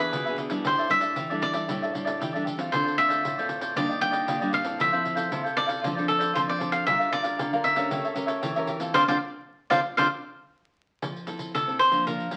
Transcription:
Already playing: E3 B3 D4 G#4 E5
0.00 G#4 B4
0.11 B2 D4 G#4 B4 E5, pandeiro
0.25 B3 D4 G#4 B4 E5, pandeiro
0.29 G#4
0.36 D4 G#4 B4 E5, pandeiro
0.50 G3 D4 E4, pandeiro
0.64 A2 G4 A4 C5 D5 E5, pandeiro
0.78 A4 D5 E5, pandeiro
0.88 G3 D4 E4 E5, muted cavaquinho stroke, pandeiro
1.00 A4 D5 E5, pandeiro
1.16 E3 G4 A4 D5 E5, pandeiro
1.30 G3 D4 E4 A4 D5 E5, pandeiro
1.42 D5, pandeiro
1.53 G3 D4 E4 A4 D5 E5, pandeiro
1.68 A2 G3 D4 E4 G4 A4 D5 E5, pandeiro
1.82 A4 D5 E5, pandeiro
1.94 G3 D4 E4, muted cavaquinho stroke, pandeiro
2.05 A4 D5 E5, pandeiro
2.20 E3 G4 A4 D5 E5, pandeiro
2.33 G3 D4 E4 A4 D5 E5, pandeiro
2.44 G4 A4 D5 E5, pandeiro
2.58 A3 C4 F4, pandeiro
2.71 D3 F4 A4 C5 D5, pandeiro
2.84 A4 C5 D5, pandeiro
2.97 A3 C4 F4 E5, muted cavaquinho stroke, pandeiro
3.08 A4 C5 D5, pandeiro
3.23 A2 F4 A4 C5 D5, pandeiro
3.38 A3 C4 F4 A4 C5 D5, pandeiro
3.49 pandeiro
3.60 A4 C5 D5, pandeiro
3.75 D#3 G3 A#3 D4 G4 D5 D#5, pandeiro
3.88 G4 D5 D#5, pandeiro
4.00 G3 A#3 D4 G5, muted cavaquinho stroke, pandeiro
4.11 G4 D5 D#5, pandeiro
4.26 A#2 D4 G4 D5 D#5, pandeiro
4.40 G3 A#3 D4 G4 D5 D#5, pandeiro
4.51 D4 G4 D5 D#5 F5, pandeiro
4.64 C4 E4 A4, pandeiro
4.78 F3 E4 A4 C5 E5 F5, pandeiro
4.92 C4 E4 A4 C5 F5, pandeiro
5.03 muted cavaquinho stroke, pandeiro
5.15 A4 C5 F5, pandeiro
5.31 C3 C4 E4 A4 C5 F5, pandeiro
5.43 A4 C5 F5, pandeiro
5.57 C4 E4 A4 D5, pandeiro
5.66 A4 C5 F5, pandeiro
5.82 F3 C4 D4 F4 A4 C5 D5, pandeiro
5.95 C4 D4 A4 C5 D5, pandeiro
6.06 A4, muted cavaquinho stroke, pandeiro
6.19 A4 C5 D5, pandeiro
6.33 F3 C4 D4 F4 A4 C5 D5, pandeiro
6.48 A4 C5 D5, pandeiro
6.58 C4 D4 F4 A4 C5 D5, pandeiro
6.72 F5, pandeiro
6.86 G3 D4 F4 G4 A#4 D5 E5 F5, pandeiro
6.98 A#4 D5 F5, pandeiro
7.10 D4 F4 A#4 D5, muted cavaquinho stroke, pandeiro
7.23 A#4 D5 F5, pandeiro
7.37 D3 G4 A#4 D5 F5, pandeiro
7.53 D4 F4 A#4 D5 F5, pandeiro
7.64 E5, pandeiro
7.76 C#4 G4 A#4 D5 F5, pandeiro
7.90 A3 G4 A4 C#5 E5, pandeiro
8.04 A4 C#5 E5, pandeiro
8.14 C#4 G4 A#4, muted cavaquinho stroke, pandeiro
8.26 A4 C#5 E5, pandeiro
8.41 E3 G4 A4 C#5 E5, pandeiro
8.56 C#4 G4 A4 A#4 C#5 E5, pandeiro
8.67 G4 A4 C#5 E5, pandeiro
8.79 C4 F4 A4, pandeiro
8.94 C4 D4 F4 A4 C5 D5 F5, pandeiro
9.08 C4 D4 F4 A4 C5 D5 F5, pandeiro
9.70 C4 D4 F4 A4 C5 D5 F5, pandeiro
9.97 C4 D4 F4 A4 C5 D5 F5, pandeiro
11.02 F3, pandeiro
11.16 pandeiro
11.27 C4 E4 A4, pandeiro
11.39 pandeiro
11.54 C3 A4, pandeiro
11.67 C4 E4 A4, pandeiro
11.79 C5, pandeiro
11.91 F3 A#3 D4, pandeiro
12.07 A#2 A#4, pandeiro
12.20 pandeiro
12.31 F3 A#3 D4, pandeiro

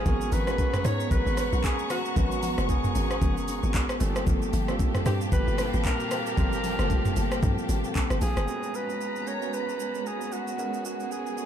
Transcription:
Already playing: G#4
0.05 G#1 G#3 B3 C#4 F#4 A#4 F#5 A#5 C#6, kick, low conga, shaker
0.21 shaker
0.32 G#1 B4, open hi-hat, low conga, shaker
0.47 G#3 B3 C#4 F#4 G#4 A#4, cross-stick, low bongo, shaker
0.58 kick, high bongo, shaker
0.74 cross-stick, mid tom, high bongo, shaker
0.84 G#2 G#3 B3 C#4 F#4 A#4 C#5, cross-stick, open hi-hat, shaker
0.92 B4
1.00 shaker
1.11 G#1 B3 C#4 F#4 A#4 B4, kick, low conga, shaker
1.26 G#1, shaker
1.37 cross-stick, open hi-hat, high bongo, shaker
1.52 B1 B3 C#4 F#4 A#4, low bongo, shaker
1.64 G#4, kick, clap, high bongo, shaker
1.79 shaker
1.90 F#4, cross-stick, open hi-hat, low bongo, shaker
2.05 shaker
2.16 G#1 G#3 B3 C#4 F#4 A#4 B4, kick, low conga, shaker
2.32 shaker
2.43 F#4, open hi-hat, low conga, shaker
2.57 F#1 G#3 B3 C#4 F#4 G#4 A#4, cross-stick, low bongo, shaker
2.69 G#4, kick, high bongo, shaker
2.84 mid tom, high bongo, shaker
2.95 G#1 B3 C#4 F#4 A#4, open hi-hat, shaker
3.11 cross-stick, shaker
3.21 F#1 B3 C#4 F#4 A#4, kick, low conga, shaker
3.37 shaker
3.48 open hi-hat, high bongo, shaker
3.63 G#1 B3 C#4 F#4 A#4, low bongo, shaker
3.74 kick, clap, high bongo, shaker
3.89 cross-stick, shaker
4.00 G1 G3 A#3 C4 F4 G4 A4 F5 G5 A5, open hi-hat, low bongo, shaker
4.16 cross-stick, shaker
4.27 G1 A#3 C4 F4 A4, kick, low conga, shaker
4.42 shaker
4.53 G1, open hi-hat, low conga, shaker
4.68 G3 A#3 C4 F4 A4, cross-stick, low bongo, shaker
4.79 kick, high bongo, shaker
4.95 cross-stick, mid tom, high bongo, shaker
5.05 G2 A#2 G3 A#3 C4 F4 G4 A4, cross-stick, open hi-hat, shaker
5.21 shaker
5.32 G1 A#3 C4 F4 A4 B4, kick, low conga, shaker
5.47 G1, shaker
5.58 cross-stick, open hi-hat, high bongo, shaker
5.73 G#1 A#3 C4 F4 A4, low bongo, shaker
5.85 A#4, kick, clap, high bongo, shaker
6.00 shaker
6.11 cross-stick, open hi-hat, low bongo, shaker
6.26 A#4, shaker
6.37 G1 G3 A#3 C4 F4 A4 C5, kick, low conga, shaker
6.53 shaker
6.64 open hi-hat, low conga, shaker
6.78 F#1 G3 A3 A#3 C4 F4 A4 A5, cross-stick, low bongo, shaker
6.85 A#3
6.90 kick, high bongo, shaker
7.05 mid tom, high bongo, shaker
7.16 G1 A#3 C4 F4 A4, open hi-hat, shaker
7.32 cross-stick, shaker
7.42 G2 A#3 C4 F4 A4, kick, low conga, shaker
7.58 shaker
7.69 G#1, open hi-hat, high bongo, shaker
7.84 A#3 C4 F4 A4, low bongo, shaker
7.95 A5, kick, clap, high bongo, shaker
8.10 G1, cross-stick, shaker
8.21 A#1 G#4 F5, open hi-hat, low bongo, shaker
8.37 G1, cross-stick, shaker
8.47 G#3 B3 C#4 F#4 A4 A#5, shaker
8.55 B4
8.63 shaker
8.74 B4, shaker
8.90 shaker
9.01 shaker
9.16 shaker
9.26 G#3 B3 C#4 F#4 A#4 C#5, shaker
9.41 G#3 B3 C#4 F#4 B4, shaker
9.53 B4, shaker
9.69 shaker
9.80 shaker
9.95 shaker
10.06 G#4, shaker
10.21 shaker
10.32 F#4, shaker
10.47 shaker
10.58 G#3 B3 C#4 F#4 G#4 A#4, shaker
10.74 shaker
10.85 F#4, shaker
11.00 shaker
11.11 G#4, shaker
11.27 shaker
11.37 G#3 B3 C#4 F#4 A4, shaker

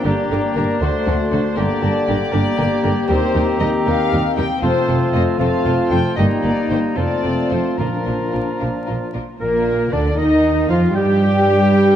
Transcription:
Already playing: A#3 D4
0.04 G1 G2 D3 G3 A#3 D4 G4 A#4 A#5
0.31 G1 G2 D3 D4 G4 A#4
0.55 G1 G2 D3 D4 G4 A#4
0.81 D2 D3 A3 D4 F#4 A4 C5 C6
1.07 D2 D3 D4 F#4 A4
1.32 D2 D3 D4 F#4 A4 C5
1.56 G1 G2 D3 A#3 D4 G4 A#4 D5 A#5
1.82 G1 G2 D3 D4 G4 A#4 A5
2.07 G1 G2 D3 D4 G4 A#4 G5
2.33 G1 G2 D3 G3 A#3 D4 G4 A#4 A#5
2.57 G1 G2 D3 D4 G4 A#4
2.83 G1 G2 D3 D4 G4 A#4
3.08 D#2 D#3 G3 C4 D#4 G4 A#4 C5 A#5
3.34 D#2 G3 D#4 G4 A#4
3.60 D#2 G3 D#4 G4 A#4 D#5
3.86 D#2 G3 D#4 G4 A#4 F5
4.11 D#2 G3 D#4 G4 A#4
4.37 D#2 G3 D#4 G4 A#4 G5
4.62 F1 F2 F3 A3 C4 F4 A4 C5 A5
4.88 F1 F2 A3 C4 F4 A4
5.14 F1 F2 A3 C4 F4 A4 D#5
5.39 F1 F2 F3 A3 C4 F4 A4 F5 A5
5.65 F1 F2 A3 C4 F4 A4
5.90 F1 F2 A3 C4 F4 A4 G5
6.17 G1 G2 G3 A#3 D#4 G4 D#5 A#5
6.42 G1 G2 A#3 D#4 G4 D5
6.70 G1 G2 A#3 D#4 G4 C5
6.96 F1 F2 F3 A3 C4 F4 A4 D5 A5
7.23 F1 F2 F3 C4 F4 A4
7.51 F1 F2 F3 C4 F4 A4 C5
7.77 A#1 A#2 F3 A#3 D4 F4 A#4 A#5
8.06 A#1 A#2 F3 D4 F4 A#4
8.32 A#1 A#2 F3 D4 F4 A#4
8.60 A#1 A#2 F3 D4 F4 A#4
8.86 A#1 A#2 F3 D4 F4 A#4
9.13 A#1 A#2 F3 D4 F4 A#4
9.40 A#1 A#2 A#3 A#4
9.92 D2 D3 D4 D5
10.17 D#2 D#3 D#4 D#5
10.70 F2 F3 F4 F5
10.95 G2 G3 G4 G5

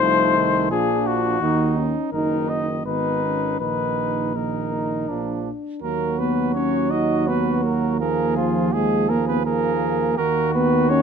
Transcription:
Already playing: C5
0.00 C2 F3 A3 D#4
0.36 D#3
0.70 A#1 F3 D4 F4 G#4
1.07 F#4
1.41 D#2 D#3 D#4
1.77 C#4
2.12 F#1 D#3 D#4 A#4
2.50 D#5
2.86 G#1 D#3 B3 D#4 B4
3.24 C#4
3.60 A#1 D#3 D#4 B4
4.35 D#3 A#3 D#4 A#4
4.72 D#4
5.08 A#1 F3 D4
5.82 D#2 F#3 A#3 F#4 A#4
6.19 B3 B4
6.55 C#4 C#5
6.91 D#4 D#5
7.28 B3 B4
7.64 A#3 A#4
8.00 F3 A#3 G#4 A#4
8.37 F3 F4
8.73 F3 G#3 G#4
9.10 A#3 A#4
9.27 B3 B4
9.46 F3 A#3 G#4 A#4
10.18 D#2 D#3 A#3 F#4 A#4
10.54 B3 B4
10.90 C#4 C#5

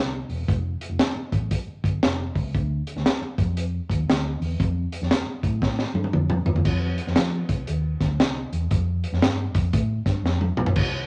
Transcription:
Already playing: C2
0.29 E1, open hi-hat
0.48 F1, kick, closed hi-hat
0.81 closed hi-hat
0.89 F1
0.99 snare, closed hi-hat
1.16 muted fingered electric bass stroke
1.32 A1, kick, closed hi-hat
1.51 kick, closed hi-hat
1.67 muted fingered electric bass stroke
1.84 G1, kick, closed hi-hat
2.03 F1, snare, closed hi-hat
2.35 C#2, kick, open hi-hat
2.55 D2, kick, closed hi-hat
2.87 closed hi-hat
2.96 D2, snare
3.06 snare, closed hi-hat
3.21 muted fingered electric bass stroke
3.38 F2, kick, closed hi-hat
3.57 closed hi-hat
3.89 D#2, kick, closed hi-hat
4.08 D2, snare, closed hi-hat
4.40 E2, open hi-hat
4.60 F2, kick, closed hi-hat
4.92 closed hi-hat
5.02 F2, snare
5.11 snare, closed hi-hat
5.27 muted fingered electric bass stroke
5.43 A2, kick, closed hi-hat
5.62 kick, snare
5.79 snare
5.94 G2, high tom
6.04 high tom
6.13 F2, mid tom
6.30 mid tom
6.45 E2, floor tom
6.56 floor tom
6.65 F2, kick, crash
6.98 closed hi-hat
7.07 F2, snare
7.16 F3, snare, closed hi-hat
7.48 C2, kick, closed hi-hat
7.67 D#2, closed hi-hat
8.00 D2, kick, snare, closed hi-hat
8.19 C2, snare, closed hi-hat
8.52 E2, closed hi-hat
8.71 F2, kick, closed hi-hat
9.04 closed hi-hat
9.12 F2, snare
9.22 G2, snare, closed hi-hat
9.55 F2, kick, closed hi-hat
9.73 A2, kick, closed hi-hat
10.06 G2, kick, snare, closed hi-hat
10.24 F2, snare
10.41 high tom
10.56 B1, mid tom
10.66 floor tom
10.76 C2, kick, crash

